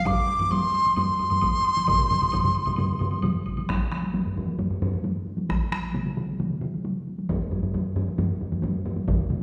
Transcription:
0.05 D6, taiko, taiko low-mid, taiko high, high woodblock
0.28 high woodblock
0.39 taiko low-mid, taiko high, high woodblock
0.51 C6, taiko low-mid, taiko high, high woodblock
0.74 high woodblock
0.85 taiko high, high woodblock
0.96 C6, taiko low-mid, taiko high, high woodblock
1.19 taiko low-mid, high woodblock
1.30 taiko low-mid, taiko high, high woodblock
1.41 taiko, taiko low-mid, taiko high, high woodblock
1.64 high woodblock
1.76 taiko high, high woodblock
1.87 taiko, taiko low-mid, taiko mid, taiko high, high woodblock
1.99 taiko low-mid, taiko mid
2.10 taiko low-mid, taiko mid, taiko high, high woodblock
2.21 taiko low-mid, taiko mid, taiko high, high woodblock
2.32 taiko, taiko low-mid, taiko mid, taiko high, high woodblock
2.44 taiko low-mid, taiko mid
2.54 high woodblock
2.66 taiko low-mid, taiko mid, taiko high, high woodblock
2.76 taiko low-mid, taiko mid, taiko high, high woodblock
2.99 taiko low-mid, taiko mid, high woodblock
3.11 taiko high, high woodblock
3.22 taiko low-mid, taiko mid, taiko high, high woodblock
3.46 taiko, high woodblock
3.57 taiko high, high woodblock
3.69 taiko rim, taiko, taiko high
3.92 taiko rim, taiko high
4.03 taiko high
4.14 taiko low-mid, taiko high
4.26 taiko low-mid
4.36 taiko low-mid, taiko high
4.48 taiko high
4.59 taiko low-mid, taiko high
4.71 taiko low-mid
4.82 taiko low-mid, taiko high
4.94 taiko high
5.04 taiko high
5.27 taiko high
5.38 taiko high
5.49 taiko rim, taiko, taiko high
5.72 taiko rim, taiko high
5.84 taiko high
5.95 taiko mid, taiko high
6.06 taiko mid
6.17 taiko mid, taiko high
6.28 taiko high
6.39 taiko mid, taiko high
6.50 taiko mid
6.61 taiko mid, taiko high
6.74 taiko high
6.85 taiko high
7.07 taiko high
7.18 taiko high
7.29 taiko, taiko low-mid, taiko high
7.51 taiko low-mid, taiko high
7.63 taiko low-mid, taiko high
7.74 taiko low-mid, taiko high
7.96 taiko low-mid, taiko high
8.08 taiko high
8.18 taiko low-mid, taiko high
8.41 taiko low-mid, taiko high
8.52 taiko low-mid, taiko high
8.63 taiko low-mid, taiko high
8.85 taiko low-mid, taiko high
8.96 taiko high
9.08 taiko, taiko low-mid, taiko mid, taiko high
9.30 taiko low-mid, taiko mid, taiko high

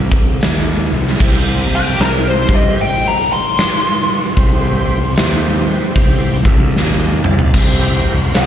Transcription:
0.12 C2, kick
0.41 D#2, snare, open hi-hat
0.92 C2
1.08 snare
1.20 C2 C4 E4 G4 C5, kick, crash
1.70 C2
1.75 G4
1.99 C2 C4 E4 G4 A#4 C5, snare, open hi-hat
2.28 C5
2.49 G2, kick
2.55 D#5
2.78 G5, open hi-hat
3.08 A#5
3.33 C6
3.57 snare, open hi-hat
4.37 C2 C4 E4 G4 C5, kick, open hi-hat
4.87 C2
5.16 D#2 C4 E4 G4 C5, snare, open hi-hat
5.67 muted fingered electric bass stroke
5.96 C2, kick, open hi-hat
6.45 C2 E5, kick
6.75 D#2 G5, snare
7.24 C2 A5, mid tom
7.39 floor tom
7.54 C2 C4 E4 G4 C5, kick, crash
8.04 C2
8.34 C2 C4 E4 G4 C5 D#5 G5, snare, open hi-hat

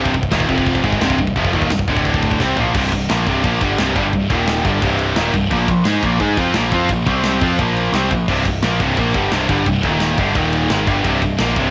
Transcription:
Already playing: C1 C2 G2 C3
0.06 kick
0.14 C1 C2 G2, kick
0.23 kick
0.31 D#1 D#2 A#2 D#3, kick, snare, crash
0.40 kick
0.48 F1 F2 C3 F3, kick
0.58 kick
0.66 kick, crash
0.75 kick
0.83 G#1 G#2 D#3 G#3, kick
0.92 kick
1.01 C1 C2 G2 C3, kick, snare, crash
1.10 kick
1.18 C1 C2 G2, kick
1.27 kick
1.36 F1 F2 C3 F3, kick, crash
1.45 kick
1.53 D#1 D#2 A#2 D#3, kick
1.62 kick
1.70 C1 C2 G2, kick, snare, crash
1.79 kick
1.87 D1 D2 A2 D3, kick
1.97 kick
2.05 kick, crash
2.14 kick
2.23 kick
2.31 kick
2.39 C2 C3 G3 C4, kick, snare
2.56 A#1 A#2 F3 A#3, floor tom
2.73 C1 C2 G2 C3, kick, crash
2.92 C1 C2 G2, kick, ride
3.09 A#1 A#2 F3 A#3, snare, ride
3.26 C1 C2 G2 C3, kick, ride
3.43 A#1 A#2 F3 A#3, kick, ride
3.60 G1 G2 D3 G3, kick, ride
3.77 C1 C2 G2 C3, snare, ride
3.95 G1 G2 D3 G3, kick, ride
4.13 C1 C2 G2, kick, ride
4.30 D#1 D#2 A#2 D#3, kick, ride
4.47 snare, ride
4.64 G1 G2 D3 G3, kick, ride
4.81 C1 C2 G2 C3, kick, ride
4.99 ride
5.16 D#1 D#2 A#2 D#3, snare, ride
5.33 C1 C2 G2, kick, ride
5.50 A#1 A#2 F3 A#3, kick, ride
5.68 A#1 A#2 F3, kick, ride
5.84 G#2 G#3 D#4 G#4, snare, ride
6.02 A#1 A#2 F3 A#3, kick, ride
6.19 G#2 G#3 D#4 G#4, kick, ride
6.37 F2 F3 C4 F4, kick, ride
6.54 A#1 A#2 F3 A#3, snare, ride
6.70 F2 F3 C4 F4, kick, ride
6.89 A#1 A#2 F3, kick, ride
7.05 C2 C3 G3 C4, kick, ride
7.24 snare, ride
7.41 F2 F3 C4 F4, kick, ride
7.58 A#1 A#2 F3 A#3, kick, ride
7.76 ride
7.92 C2 C3 G3 C4, snare, ride
8.11 A#1 A#2 F3, kick, ride
8.28 C1 C2 G2 C3, kick, crash
8.45 C1 C2 G2, kick, ride
8.62 A#1 A#2 F3 A#3, snare, ride
8.80 C1 C2 G2 C3, kick, ride
8.97 A#1 A#2 F3 A#3, kick, ride
9.14 G1 G2 D3 G3, kick, ride
9.31 C1 C2 G2 C3, snare, ride
9.49 G1 G2 D3 G3, kick, ride
9.66 C1 C2 G2, kick, ride
9.83 D#1 D#2 A#2 D#3, kick, ride
10.00 snare, ride
10.18 G1 G2 D3 G3, kick, ride
10.35 D#1 D#2 A#2 D#3, kick, ride
10.53 ride
10.69 G#1 G#2 D#3 G#3, snare, ride
10.87 G1 G2 D3 G3, kick, ride
11.03 C1 C2 G2 C3, kick, ride
11.21 C1 C2 G2, kick, ride
11.38 A#1 A#2 F3 A#3, snare, ride
11.56 C1 C2 G2 C3, kick, ride

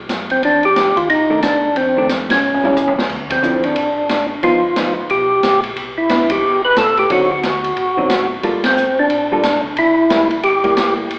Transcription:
0.09 F#2, snare, hi-hat pedal, ride
0.30 C4, ride
0.42 F2 D4, ride
0.63 G4, ride
0.76 snare, hi-hat pedal, ride
0.96 D#2 F4, ride
1.09 C2 D#4, ride
1.30 D#3 A3 D4
1.42 D4, snare, hi-hat pedal, ride
1.75 F2 C4, ride
1.97 D#3 A3 D4
2.09 snare, hi-hat pedal, ride
2.30 C#4, snare, ride
2.42 A1
2.54 mid tom
2.64 G3 C#4 E4, mid tom
2.76 floor tom, hi-hat pedal
2.87 floor tom
2.96 A1, snare
3.09 D2, kick, crash
3.30 C4, kick, ride
3.43 D3 F3 C4 E4, hi-hat pedal
3.54 E2
3.63 D#2 D4, ride
3.76 A1, ride
4.09 snare, hi-hat pedal, ride
4.43 G1 F3 B3 D#4 F4, ride
4.76 F3 B3 D#4, snare, hi-hat pedal, ride
4.97 G1
5.09 B1 G4, ride
5.43 A#1, snare, hi-hat pedal, ride
5.63 ride
5.76 C2, ride
5.98 E4
6.09 E3 B3 D4, snare, hi-hat pedal, ride
6.30 G4, kick, ride
6.42 G1
6.65 B4
6.76 A2 A4, snare, hi-hat pedal, ride
6.97 G4, ride
7.10 D2 D3 F#3 C4 D#4 F#4, ride
7.32 F#4
7.43 snare, hi-hat pedal, ride
7.64 ride
7.77 A1, ride
7.97 D3 F#3 C4 D#4
8.10 snare, hi-hat pedal, ride
8.43 G1 G3 A#3 F4 A4, ride
8.64 C4, snare, ride
8.77 hi-hat pedal
8.99 D4
9.10 A#1, ride
9.32 G3 A#3 F4 A4
9.43 snare, hi-hat pedal, ride
9.64 C#2
9.76 C2 E4, ride
10.10 G3 A#3 E4, snare, hi-hat pedal, ride
10.31 ride
10.43 G1 G4, ride
10.64 G3 A#3 E4, kick, ride
10.77 snare, hi-hat pedal, ride
11.10 F1, ride

